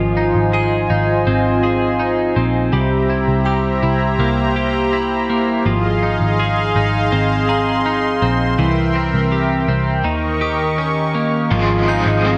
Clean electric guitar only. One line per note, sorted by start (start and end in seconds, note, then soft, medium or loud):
0.00 2.72 F3 medium
0.17 0.89 D#4 medium
0.53 1.62 G#4 medium
0.90 1.98 D#4 medium
1.27 2.36 C4 medium
1.64 2.81 G#4 medium
2.00 2.80 D#4 medium
2.36 4.19 C4 soft
2.73 5.66 G3 medium
3.10 3.82 E4 soft
3.46 4.55 G4 medium
3.83 4.92 E4 medium
4.20 5.28 A#3 medium
4.56 5.73 G4 medium
4.93 5.73 E4 medium
5.30 5.73 A#3 soft
5.66 8.58 F3 medium
6.03 6.75 D#4 medium
6.40 7.48 G#4 medium
6.76 7.85 D#4 medium
7.12 8.21 C4 medium
7.49 8.66 G#4 medium
7.86 8.66 D#4 medium
8.22 8.66 C4 medium
8.59 10.04 E3 medium
8.95 9.67 C4 medium
9.32 10.12 G4 medium
9.68 10.12 C4 medium
10.04 11.51 D#3 medium
10.41 11.58 G4 medium
10.78 11.59 C#4 medium
11.15 11.59 A#3 medium
11.51 12.38 F3 medium
11.88 12.38 D#4 medium
12.25 12.38 C4 medium